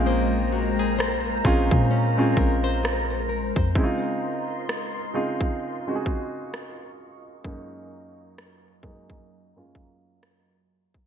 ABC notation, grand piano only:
X:1
M:4/4
L:1/16
Q:"Swing 16ths" 1/4=65
K:Bbm
V:1 name="Grand piano"
[A,CDF]4- [A,CDF] z [A,CDF]3 [A,CDF]6 z | [D,A,CE=EF]4- [D,A,C_E=EF] z [D,A,C_EF]3 [D,A,CEGA]6 z | [G,,A,B,DE]4- [G,,A,B,DE] z [G,,A,B,DE]3 [G,,A,B,DF]6 z |]